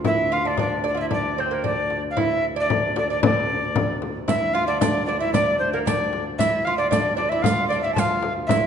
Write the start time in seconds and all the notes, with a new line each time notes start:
0.04 D2 E4 E5, frame drum
0.32 F4 F5
0.45 D4 D5
0.57 D4 D5, frame drum
0.84 D4 D5, frame drum
0.95 E4 F4
1.00 E5
1.11 D4 D5, frame drum
1.38 C4 C5
1.51 A#3 A#4
1.64 D4 D5, frame drum
1.90 frame drum
2.10 F5
2.17 E4 E5, frame drum
2.56 D4 D5
2.70 frame drum
2.96 D4 D5, frame drum
3.10 D4 D5
3.23 D4 D5, frame drum
3.50 frame drum
3.76 frame drum
4.02 frame drum
4.28 D2 E4 E5, riq, frame drum
4.53 F4 F5
4.67 D4 D5
4.80 D4 D5, riq, frame drum
5.06 D4 D5, frame drum
5.20 E4 E5
5.33 D4 D5, riq, frame drum
5.59 C5
5.73 A#3 A#4
5.85 D4 D5, riq, frame drum
6.13 frame drum
6.38 E4 E5, riq, frame drum
6.64 F4 F5
6.78 D4 D5
6.90 D4 D5, riq, frame drum
7.17 D4 D5, frame drum
7.29 E4 E5
7.42 F4 F5, frame drum
7.46 riq
7.68 D4 D5
7.72 riq
7.81 E4 E5
7.94 F4 A5, frame drum
7.98 F5, riq
8.23 frame drum
8.46 D2 E4 E5, frame drum
8.51 riq